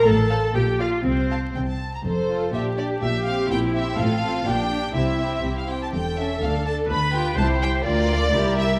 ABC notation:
X:1
M:2/4
L:1/16
Q:1/4=124
K:Cmix
V:1 name="Violin section"
a4 g2 f2 | c4 z4 | c4 e2 d2 | e2 f2 g2 e2 |
f4 g4 | e4- e f g a | g2 e2 f2 a2 | =b2 g2 a2 g2 |
d6 e2 |]
V:2 name="Viola section"
A4 G2 F2 | C4 z4 | A4 G4 | G4 E4 |
F4 D4 | E6 z2 | A8 | =B4 c4 |
F4 G4 |]
V:3 name="Violin section"
z2 [cf]2 z2 [df]2 | z2 [fa]2 g a2 b | z2 [FA]2 [DG]2 [DG]2 | z2 [CG]4 [CG]2 |
[CA]2 [CA]2 [DG]2 [DG]2 | [CG]2 [CG]4 [CG]2 | z2 [^CA]2 [DA]2 [DA]2 | z2 [FG]2 [EG]2 [EG]2 |
[FB]4 [EB]4 |]
V:4 name="Cello section" clef=bass
A,,4 B,,4 | C,4 C,4 | F,,4 B,,4 | B,,4 B,,4 |
A,,4 B,,4 | C,4 C,4 | E,,4 D,,4 | D,,4 C,,4 |
D,,4 C,,4 |]
V:5 name="Double bass section" clef=bass
A,,,4 B,,,4 | C,,4 C,,4 | F,,,4 B,,,4 | B,,,4 B,,,4 |
A,,,4 B,,,4 | C,,4 C,,4 | E,,,4 D,,4 | D,,4 C,,4 |
D,,4 C,,4 |]